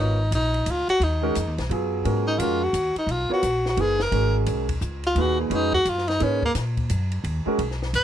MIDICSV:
0, 0, Header, 1, 6, 480
1, 0, Start_track
1, 0, Tempo, 346620
1, 1394, Time_signature, 3, 2, 24, 8
1, 11131, End_track
2, 0, Start_track
2, 0, Title_t, "Tenor saxophone"
2, 0, Program_c, 0, 66
2, 0, Note_on_c, 0, 63, 82
2, 472, Note_off_c, 0, 63, 0
2, 480, Note_on_c, 0, 63, 84
2, 982, Note_on_c, 0, 65, 85
2, 1003, Note_off_c, 0, 63, 0
2, 1236, Note_off_c, 0, 65, 0
2, 1244, Note_on_c, 0, 66, 106
2, 1437, Note_on_c, 0, 63, 79
2, 1458, Note_off_c, 0, 66, 0
2, 2202, Note_off_c, 0, 63, 0
2, 3150, Note_on_c, 0, 63, 90
2, 3311, Note_on_c, 0, 65, 84
2, 3331, Note_off_c, 0, 63, 0
2, 3646, Note_on_c, 0, 66, 102
2, 3667, Note_off_c, 0, 65, 0
2, 4113, Note_off_c, 0, 66, 0
2, 4132, Note_on_c, 0, 63, 78
2, 4313, Note_on_c, 0, 65, 75
2, 4334, Note_off_c, 0, 63, 0
2, 4600, Note_off_c, 0, 65, 0
2, 4620, Note_on_c, 0, 66, 92
2, 5048, Note_off_c, 0, 66, 0
2, 5113, Note_on_c, 0, 66, 85
2, 5277, Note_on_c, 0, 68, 96
2, 5298, Note_off_c, 0, 66, 0
2, 5573, Note_on_c, 0, 70, 91
2, 5594, Note_off_c, 0, 68, 0
2, 6037, Note_off_c, 0, 70, 0
2, 7016, Note_on_c, 0, 65, 102
2, 7217, Note_on_c, 0, 66, 95
2, 7237, Note_off_c, 0, 65, 0
2, 7479, Note_off_c, 0, 66, 0
2, 7487, Note_on_c, 0, 58, 55
2, 7684, Note_on_c, 0, 63, 87
2, 7704, Note_off_c, 0, 58, 0
2, 7944, Note_off_c, 0, 63, 0
2, 7953, Note_on_c, 0, 66, 110
2, 8158, Note_on_c, 0, 65, 95
2, 8178, Note_off_c, 0, 66, 0
2, 8425, Note_on_c, 0, 63, 91
2, 8446, Note_off_c, 0, 65, 0
2, 8625, Note_on_c, 0, 61, 83
2, 8646, Note_off_c, 0, 63, 0
2, 8916, Note_off_c, 0, 61, 0
2, 8936, Note_on_c, 0, 58, 91
2, 9030, Note_off_c, 0, 58, 0
2, 11015, Note_on_c, 0, 71, 99
2, 11131, Note_off_c, 0, 71, 0
2, 11131, End_track
3, 0, Start_track
3, 0, Title_t, "Upright piano"
3, 0, Program_c, 1, 0
3, 0, Note_on_c, 1, 59, 58
3, 0, Note_on_c, 1, 65, 53
3, 0, Note_on_c, 1, 70, 56
3, 0, Note_on_c, 1, 73, 66
3, 226, Note_off_c, 1, 59, 0
3, 229, Note_off_c, 1, 65, 0
3, 236, Note_off_c, 1, 70, 0
3, 240, Note_off_c, 1, 73, 0
3, 1686, Note_on_c, 1, 56, 75
3, 1700, Note_on_c, 1, 61, 69
3, 1703, Note_on_c, 1, 66, 75
3, 1706, Note_on_c, 1, 70, 85
3, 1850, Note_off_c, 1, 56, 0
3, 1857, Note_off_c, 1, 61, 0
3, 1859, Note_off_c, 1, 66, 0
3, 1860, Note_off_c, 1, 70, 0
3, 2356, Note_on_c, 1, 54, 60
3, 2364, Note_on_c, 1, 59, 53
3, 2366, Note_on_c, 1, 65, 51
3, 2386, Note_on_c, 1, 68, 66
3, 2827, Note_on_c, 1, 56, 58
3, 2833, Note_on_c, 1, 61, 56
3, 2844, Note_on_c, 1, 66, 55
3, 2849, Note_on_c, 1, 70, 72
3, 3080, Note_off_c, 1, 54, 0
3, 3084, Note_off_c, 1, 59, 0
3, 3085, Note_off_c, 1, 65, 0
3, 3095, Note_off_c, 1, 68, 0
3, 3293, Note_off_c, 1, 56, 0
3, 3296, Note_off_c, 1, 61, 0
3, 3302, Note_off_c, 1, 66, 0
3, 3304, Note_off_c, 1, 70, 0
3, 3324, Note_on_c, 1, 56, 64
3, 3336, Note_on_c, 1, 61, 60
3, 3337, Note_on_c, 1, 66, 61
3, 3350, Note_on_c, 1, 70, 72
3, 3594, Note_off_c, 1, 56, 0
3, 3601, Note_off_c, 1, 61, 0
3, 3601, Note_off_c, 1, 66, 0
3, 3608, Note_off_c, 1, 70, 0
3, 4557, Note_on_c, 1, 59, 68
3, 4566, Note_on_c, 1, 65, 65
3, 4573, Note_on_c, 1, 70, 64
3, 4586, Note_on_c, 1, 73, 76
3, 4725, Note_off_c, 1, 59, 0
3, 4730, Note_off_c, 1, 65, 0
3, 4733, Note_off_c, 1, 70, 0
3, 4740, Note_off_c, 1, 73, 0
3, 5226, Note_on_c, 1, 58, 57
3, 5230, Note_on_c, 1, 63, 53
3, 5238, Note_on_c, 1, 68, 52
3, 5249, Note_on_c, 1, 71, 60
3, 5505, Note_off_c, 1, 58, 0
3, 5507, Note_off_c, 1, 63, 0
3, 5512, Note_off_c, 1, 68, 0
3, 5517, Note_off_c, 1, 71, 0
3, 5693, Note_on_c, 1, 56, 61
3, 5701, Note_on_c, 1, 61, 55
3, 5706, Note_on_c, 1, 66, 50
3, 5714, Note_on_c, 1, 70, 68
3, 6429, Note_off_c, 1, 56, 0
3, 6432, Note_off_c, 1, 61, 0
3, 6435, Note_off_c, 1, 66, 0
3, 6439, Note_off_c, 1, 70, 0
3, 7154, Note_on_c, 1, 46, 63
3, 7163, Note_on_c, 1, 63, 58
3, 7171, Note_on_c, 1, 68, 60
3, 7173, Note_on_c, 1, 71, 71
3, 7613, Note_off_c, 1, 71, 0
3, 7615, Note_on_c, 1, 56, 67
3, 7617, Note_off_c, 1, 46, 0
3, 7622, Note_off_c, 1, 63, 0
3, 7626, Note_off_c, 1, 68, 0
3, 7627, Note_on_c, 1, 61, 64
3, 7634, Note_on_c, 1, 71, 67
3, 7635, Note_on_c, 1, 66, 56
3, 7900, Note_off_c, 1, 56, 0
3, 7906, Note_off_c, 1, 61, 0
3, 7910, Note_off_c, 1, 66, 0
3, 7910, Note_off_c, 1, 71, 0
3, 8585, Note_on_c, 1, 58, 62
3, 8589, Note_on_c, 1, 63, 55
3, 8605, Note_on_c, 1, 68, 56
3, 8611, Note_on_c, 1, 71, 67
3, 8865, Note_off_c, 1, 58, 0
3, 8867, Note_off_c, 1, 63, 0
3, 8875, Note_off_c, 1, 68, 0
3, 8878, Note_off_c, 1, 71, 0
3, 10328, Note_on_c, 1, 56, 79
3, 10339, Note_on_c, 1, 61, 66
3, 10349, Note_on_c, 1, 66, 68
3, 10353, Note_on_c, 1, 70, 75
3, 10491, Note_off_c, 1, 56, 0
3, 10497, Note_off_c, 1, 61, 0
3, 10502, Note_off_c, 1, 66, 0
3, 10503, Note_off_c, 1, 70, 0
3, 11131, End_track
4, 0, Start_track
4, 0, Title_t, "Upright bass"
4, 0, Program_c, 2, 32
4, 0, Note_on_c, 2, 32, 91
4, 412, Note_off_c, 2, 32, 0
4, 432, Note_on_c, 2, 34, 78
4, 899, Note_off_c, 2, 34, 0
4, 917, Note_on_c, 2, 37, 86
4, 1201, Note_off_c, 2, 37, 0
4, 1385, Note_on_c, 2, 39, 86
4, 1855, Note_off_c, 2, 39, 0
4, 1887, Note_on_c, 2, 41, 81
4, 2027, Note_off_c, 2, 41, 0
4, 2027, Note_on_c, 2, 39, 53
4, 2181, Note_off_c, 2, 39, 0
4, 2190, Note_on_c, 2, 35, 66
4, 2336, Note_off_c, 2, 35, 0
4, 2345, Note_on_c, 2, 42, 87
4, 2815, Note_off_c, 2, 42, 0
4, 2840, Note_on_c, 2, 44, 85
4, 3295, Note_off_c, 2, 44, 0
4, 3303, Note_on_c, 2, 41, 85
4, 3774, Note_off_c, 2, 41, 0
4, 3782, Note_on_c, 2, 39, 81
4, 4072, Note_off_c, 2, 39, 0
4, 4245, Note_on_c, 2, 35, 85
4, 4543, Note_off_c, 2, 35, 0
4, 4747, Note_on_c, 2, 34, 80
4, 5212, Note_off_c, 2, 34, 0
4, 5221, Note_on_c, 2, 30, 78
4, 5693, Note_off_c, 2, 30, 0
4, 5701, Note_on_c, 2, 32, 86
4, 6173, Note_off_c, 2, 32, 0
4, 6190, Note_on_c, 2, 35, 78
4, 6655, Note_off_c, 2, 35, 0
4, 6663, Note_on_c, 2, 37, 84
4, 7128, Note_off_c, 2, 37, 0
4, 7136, Note_on_c, 2, 39, 83
4, 7606, Note_off_c, 2, 39, 0
4, 7614, Note_on_c, 2, 41, 85
4, 8090, Note_off_c, 2, 41, 0
4, 8105, Note_on_c, 2, 42, 81
4, 8575, Note_off_c, 2, 42, 0
4, 8600, Note_on_c, 2, 44, 87
4, 9056, Note_off_c, 2, 44, 0
4, 9064, Note_on_c, 2, 46, 78
4, 9535, Note_off_c, 2, 46, 0
4, 9557, Note_on_c, 2, 42, 88
4, 10014, Note_off_c, 2, 42, 0
4, 10022, Note_on_c, 2, 39, 92
4, 10312, Note_off_c, 2, 39, 0
4, 10502, Note_on_c, 2, 35, 89
4, 10974, Note_off_c, 2, 35, 0
4, 10987, Note_on_c, 2, 30, 81
4, 11131, Note_off_c, 2, 30, 0
4, 11131, End_track
5, 0, Start_track
5, 0, Title_t, "Muted upright bass strokes"
5, 1222, Note_on_c, 9, 29, 33
5, 1361, Note_off_c, 9, 29, 0
5, 4093, Note_on_c, 9, 29, 31
5, 4231, Note_off_c, 9, 29, 0
5, 10330, Note_on_c, 9, 29, 37
5, 10468, Note_off_c, 9, 29, 0
5, 11131, End_track
6, 0, Start_track
6, 0, Title_t, "Drums"
6, 443, Note_on_c, 9, 44, 57
6, 443, Note_on_c, 9, 51, 76
6, 582, Note_off_c, 9, 44, 0
6, 582, Note_off_c, 9, 51, 0
6, 750, Note_on_c, 9, 51, 40
6, 888, Note_off_c, 9, 51, 0
6, 915, Note_on_c, 9, 44, 55
6, 915, Note_on_c, 9, 51, 67
6, 1054, Note_off_c, 9, 44, 0
6, 1054, Note_off_c, 9, 51, 0
6, 1231, Note_on_c, 9, 51, 48
6, 1370, Note_off_c, 9, 51, 0
6, 1406, Note_on_c, 9, 51, 61
6, 1544, Note_off_c, 9, 51, 0
6, 1872, Note_on_c, 9, 44, 59
6, 1872, Note_on_c, 9, 51, 64
6, 2011, Note_off_c, 9, 44, 0
6, 2011, Note_off_c, 9, 51, 0
6, 2192, Note_on_c, 9, 51, 42
6, 2196, Note_on_c, 9, 38, 44
6, 2330, Note_off_c, 9, 51, 0
6, 2334, Note_off_c, 9, 38, 0
6, 2367, Note_on_c, 9, 51, 55
6, 2506, Note_off_c, 9, 51, 0
6, 2842, Note_on_c, 9, 51, 57
6, 2981, Note_off_c, 9, 51, 0
6, 3318, Note_on_c, 9, 44, 51
6, 3318, Note_on_c, 9, 51, 74
6, 3456, Note_off_c, 9, 44, 0
6, 3456, Note_off_c, 9, 51, 0
6, 3791, Note_on_c, 9, 44, 59
6, 3791, Note_on_c, 9, 51, 70
6, 3930, Note_off_c, 9, 44, 0
6, 3930, Note_off_c, 9, 51, 0
6, 4101, Note_on_c, 9, 51, 45
6, 4240, Note_off_c, 9, 51, 0
6, 4274, Note_on_c, 9, 51, 53
6, 4412, Note_off_c, 9, 51, 0
6, 4746, Note_on_c, 9, 44, 61
6, 4746, Note_on_c, 9, 51, 69
6, 4885, Note_off_c, 9, 44, 0
6, 4885, Note_off_c, 9, 51, 0
6, 5064, Note_on_c, 9, 38, 43
6, 5203, Note_off_c, 9, 38, 0
6, 5225, Note_on_c, 9, 51, 64
6, 5363, Note_off_c, 9, 51, 0
6, 5534, Note_on_c, 9, 38, 55
6, 5672, Note_off_c, 9, 38, 0
6, 5707, Note_on_c, 9, 51, 58
6, 5845, Note_off_c, 9, 51, 0
6, 6182, Note_on_c, 9, 44, 56
6, 6182, Note_on_c, 9, 51, 66
6, 6320, Note_off_c, 9, 44, 0
6, 6320, Note_off_c, 9, 51, 0
6, 6493, Note_on_c, 9, 51, 66
6, 6496, Note_on_c, 9, 36, 46
6, 6631, Note_off_c, 9, 51, 0
6, 6634, Note_off_c, 9, 36, 0
6, 6666, Note_on_c, 9, 44, 56
6, 6805, Note_off_c, 9, 44, 0
6, 6974, Note_on_c, 9, 51, 46
6, 7112, Note_off_c, 9, 51, 0
6, 7141, Note_on_c, 9, 51, 59
6, 7280, Note_off_c, 9, 51, 0
6, 7628, Note_on_c, 9, 51, 62
6, 7766, Note_off_c, 9, 51, 0
6, 7936, Note_on_c, 9, 36, 46
6, 8075, Note_off_c, 9, 36, 0
6, 8107, Note_on_c, 9, 44, 53
6, 8107, Note_on_c, 9, 51, 63
6, 8246, Note_off_c, 9, 44, 0
6, 8246, Note_off_c, 9, 51, 0
6, 8284, Note_on_c, 9, 38, 25
6, 8416, Note_on_c, 9, 51, 45
6, 8422, Note_off_c, 9, 38, 0
6, 8442, Note_on_c, 9, 38, 45
6, 8555, Note_off_c, 9, 51, 0
6, 8581, Note_off_c, 9, 38, 0
6, 8588, Note_on_c, 9, 51, 59
6, 8727, Note_off_c, 9, 51, 0
6, 8897, Note_on_c, 9, 36, 56
6, 9036, Note_off_c, 9, 36, 0
6, 9069, Note_on_c, 9, 44, 60
6, 9069, Note_on_c, 9, 51, 72
6, 9073, Note_on_c, 9, 38, 39
6, 9207, Note_off_c, 9, 44, 0
6, 9207, Note_off_c, 9, 51, 0
6, 9211, Note_off_c, 9, 38, 0
6, 9379, Note_on_c, 9, 51, 46
6, 9380, Note_on_c, 9, 36, 57
6, 9517, Note_off_c, 9, 51, 0
6, 9519, Note_off_c, 9, 36, 0
6, 9549, Note_on_c, 9, 44, 63
6, 9549, Note_on_c, 9, 51, 65
6, 9687, Note_off_c, 9, 44, 0
6, 9687, Note_off_c, 9, 51, 0
6, 9854, Note_on_c, 9, 51, 46
6, 9992, Note_off_c, 9, 51, 0
6, 10031, Note_on_c, 9, 51, 60
6, 10170, Note_off_c, 9, 51, 0
6, 10507, Note_on_c, 9, 51, 66
6, 10645, Note_off_c, 9, 51, 0
6, 10678, Note_on_c, 9, 38, 26
6, 10817, Note_off_c, 9, 38, 0
6, 10834, Note_on_c, 9, 38, 42
6, 10972, Note_off_c, 9, 38, 0
6, 10992, Note_on_c, 9, 44, 57
6, 10992, Note_on_c, 9, 51, 66
6, 11130, Note_off_c, 9, 44, 0
6, 11130, Note_off_c, 9, 51, 0
6, 11131, End_track
0, 0, End_of_file